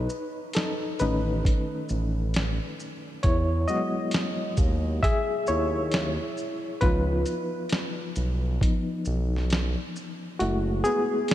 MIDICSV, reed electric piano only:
0, 0, Header, 1, 2, 480
1, 0, Start_track
1, 0, Key_signature, 4, "minor"
1, 0, Tempo, 895522
1, 1736, Time_signature, 4, 2, 24, 8
1, 6080, End_track
2, 0, Start_track
2, 0, Title_t, "Reed electric piano"
2, 0, Program_c, 0, 4
2, 0, Control_c, 0, 64, 127
2, 0, Note_on_c, 0, 63, 72
2, 0, Note_on_c, 0, 71, 80
2, 277, Note_off_c, 0, 63, 0
2, 295, Note_on_c, 0, 69, 70
2, 306, Note_on_c, 0, 63, 61
2, 309, Note_off_c, 0, 71, 0
2, 403, Note_off_c, 0, 69, 0
2, 412, Note_off_c, 0, 63, 0
2, 535, Note_on_c, 0, 71, 77
2, 539, Note_on_c, 0, 51, 52
2, 543, Note_on_c, 0, 57, 46
2, 544, Note_on_c, 0, 61, 55
2, 545, Note_on_c, 0, 63, 59
2, 1236, Note_off_c, 0, 51, 0
2, 1238, Note_off_c, 0, 57, 0
2, 1239, Note_off_c, 0, 61, 0
2, 1474, Note_off_c, 0, 71, 0
2, 1479, Note_off_c, 0, 63, 0
2, 1731, Note_on_c, 0, 73, 86
2, 1743, Control_c, 0, 64, 0
2, 1743, Note_on_c, 0, 64, 61
2, 1843, Control_c, 0, 64, 127
2, 1963, Note_off_c, 0, 64, 0
2, 1970, Note_on_c, 0, 75, 92
2, 1975, Note_on_c, 0, 54, 49
2, 1979, Note_on_c, 0, 56, 53
2, 1981, Note_off_c, 0, 73, 0
2, 1981, Note_on_c, 0, 59, 56
2, 1983, Note_on_c, 0, 66, 70
2, 2678, Note_off_c, 0, 66, 0
2, 2694, Note_on_c, 0, 76, 110
2, 2702, Note_on_c, 0, 68, 84
2, 2715, Note_off_c, 0, 75, 0
2, 2918, Note_off_c, 0, 76, 0
2, 2922, Note_off_c, 0, 68, 0
2, 2938, Note_on_c, 0, 73, 88
2, 2945, Note_on_c, 0, 64, 61
2, 3395, Note_off_c, 0, 73, 0
2, 3399, Note_off_c, 0, 64, 0
2, 3634, Note_off_c, 0, 54, 0
2, 3636, Note_off_c, 0, 56, 0
2, 3637, Note_off_c, 0, 59, 0
2, 3650, Note_on_c, 0, 71, 104
2, 3655, Note_on_c, 0, 53, 52
2, 3657, Note_on_c, 0, 59, 44
2, 3661, Note_on_c, 0, 63, 52
2, 3662, Note_on_c, 0, 65, 71
2, 3663, Control_c, 0, 64, 0
2, 3743, Control_c, 0, 64, 127
2, 3999, Note_off_c, 0, 53, 0
2, 4000, Note_off_c, 0, 59, 0
2, 4002, Note_off_c, 0, 63, 0
2, 4351, Note_off_c, 0, 71, 0
2, 4357, Note_off_c, 0, 65, 0
2, 4616, Note_on_c, 0, 53, 47
2, 4618, Note_on_c, 0, 59, 40
2, 4619, Note_on_c, 0, 63, 48
2, 4834, Note_off_c, 0, 53, 0
2, 4835, Note_off_c, 0, 59, 0
2, 4836, Note_off_c, 0, 63, 0
2, 5571, Note_on_c, 0, 66, 87
2, 5577, Note_on_c, 0, 56, 46
2, 5582, Note_on_c, 0, 57, 67
2, 5583, Control_c, 0, 64, 0
2, 5583, Note_on_c, 0, 64, 55
2, 5669, Control_c, 0, 64, 127
2, 5804, Note_off_c, 0, 57, 0
2, 5809, Note_on_c, 0, 68, 92
2, 5820, Note_off_c, 0, 66, 0
2, 5822, Note_on_c, 0, 59, 77
2, 6080, Note_off_c, 0, 56, 0
2, 6080, Note_off_c, 0, 59, 0
2, 6080, Note_off_c, 0, 64, 0
2, 6080, Note_off_c, 0, 68, 0
2, 6080, End_track
0, 0, End_of_file